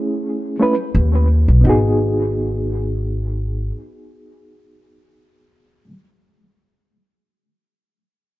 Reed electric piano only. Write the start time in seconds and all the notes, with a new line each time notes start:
Already playing: A3 C#4 E4 G#4
0.59 A3 C#4 E4 B4
1.61 B3 D#4
1.67 F#4 G#4